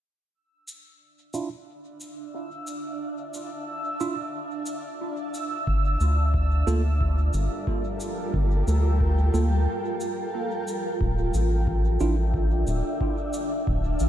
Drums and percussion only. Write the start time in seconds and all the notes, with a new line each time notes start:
0.68 cabasa
1.34 cabasa
2.00 cabasa
2.67 cabasa
3.34 cabasa
4.00 cabasa
4.66 cabasa
5.34 cabasa
5.67 kick
6.01 cabasa
6.34 kick
6.68 cabasa
7.01 kick
7.34 cabasa
7.67 kick
8.00 cabasa
8.34 kick
8.68 cabasa
9.01 kick
9.34 cabasa
10.01 cabasa
10.68 cabasa
11.01 kick
11.34 cabasa
11.67 kick
12.00 cabasa
12.34 kick
12.67 cabasa
13.01 kick
13.33 cabasa
13.67 kick
14.00 cabasa